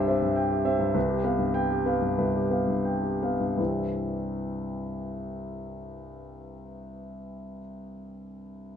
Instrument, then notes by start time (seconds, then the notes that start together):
grand piano
Already playing: C2 G2 C4 G4 C5 E5 G5
0.08 C4 C5 E5
0.22 G2
0.36 G5
0.51 G4
0.65 C4 C5 E5
0.79 G2
0.94 C2 B4
1.09 G4
1.24 B3 B4 F5
1.39 G2
1.54 G5
1.71 G4
1.86 B3 B4 F5
2.01 G2
2.18 C2 B4
2.35 G4
2.50 B3 B4 F5
2.68 G2
2.85 G5
3.03 G4
3.22 B3 B4 F5
3.40 G2
3.57 C2 G2 E3 G3 C4 E4